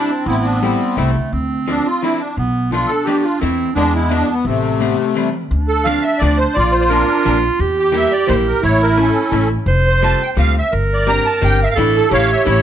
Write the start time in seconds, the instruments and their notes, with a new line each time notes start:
Already playing: hollow-body jazz guitar D4 E4, accordion D4, clarinet D4
0.09 accordion C4
0.26 upright bass A1, clarinet B3, accordion C4 E4
0.43 accordion D4
0.61 accordion G3 C4, hollow-body jazz guitar G3 A3 C4 E4
0.97 upright bass C2, hollow-body jazz guitar G3 A3 C4 E4, clarinet A3
1.16 upright bass D2
1.32 upright bass D2, clarinet C4
1.68 hollow-body jazz guitar F3 A3 C4 D4, accordion D4
1.86 accordion F4
2.02 hollow-body jazz guitar F3 A3 C4 D4, accordion E4
2.20 accordion D4
2.37 upright bass B1, clarinet B3
2.72 hollow-body jazz guitar F3 A3 B3 D4, clarinet D4, accordion F4
2.87 accordion A4
3.05 hollow-body jazz guitar F3 A3 D4, accordion G4
3.09 hollow-body jazz guitar B3
3.24 accordion F4
3.40 upright bass E2, hollow-body jazz guitar E3 A3 C4 E4, clarinet C4
3.75 upright bass E2, hollow-body jazz guitar E3 G#3 B3 D4, accordion G#3 D4, clarinet B3
3.96 accordion E4
4.10 hollow-body jazz guitar E3 G#3 B3 D4, accordion D4
4.33 accordion B3
4.45 upright bass A1, accordion C3 A3, clarinet C4
4.80 hollow-body jazz guitar E3 G3 A3 C4, clarinet B3
4.98 clarinet A3
5.15 hollow-body jazz guitar E3 G3 A3 C4, clarinet G3
5.51 upright bass D2, clarinet D4
5.68 accordion A4
5.84 hollow-body jazz guitar F3 A3 C4 D4, accordion F5
6.02 accordion E5
6.18 upright bass D2, hollow-body jazz guitar F3 A3 C4, accordion D5
6.23 hollow-body jazz guitar D4
6.37 accordion C5
6.54 upright bass A#1, clarinet F4, accordion F4 D5
6.72 accordion C5
6.79 accordion C5 D5
6.88 hollow-body jazz guitar F3 A#3 C4 D4, accordion D4 A#4
7.25 upright bass A#1, hollow-body jazz guitar F3 A#3 C4 D4
7.59 upright bass E2, clarinet G4
7.79 accordion G4
7.92 hollow-body jazz guitar E3 G3 A#3 E4
7.97 accordion E5
8.12 accordion D5
8.27 upright bass A#1, hollow-body jazz guitar E3 G3 A#3 E4, accordion C5
8.48 accordion A#4
8.62 upright bass A1, accordion E4 C#5, clarinet E4
8.83 accordion A#4
8.97 hollow-body jazz guitar E3 A3 C#4 E4, accordion C#4 A4
9.32 upright bass A1, hollow-body jazz guitar E3 A3 C#4 E4
9.66 upright bass F1, clarinet C5
9.87 accordion C5
10.02 hollow-body jazz guitar G3 A3 C4 F4, accordion A5
10.22 accordion G5
10.37 upright bass D2, hollow-body jazz guitar G3 A3 C4 F4, accordion F5
10.59 accordion E5
10.72 upright bass G1, clarinet A#4
10.94 accordion D5
11.07 hollow-body jazz guitar G3 C4 D4 G4, accordion A#5
11.26 accordion A5
11.42 upright bass G1, hollow-body jazz guitar G3 C4 D4 G4, accordion G5
11.63 accordion E5 F5
11.71 accordion F5
11.75 upright bass A1, hollow-body jazz guitar E3 A3 D4 E4, clarinet A4
11.96 accordion A4
12.10 upright bass A1, hollow-body jazz guitar E3 A3 C#4 E4, clarinet G4, accordion C#5
12.14 accordion F5
12.33 accordion E5
12.45 upright bass A1, hollow-body jazz guitar E3 A3 C#4 E4
12.50 accordion C#5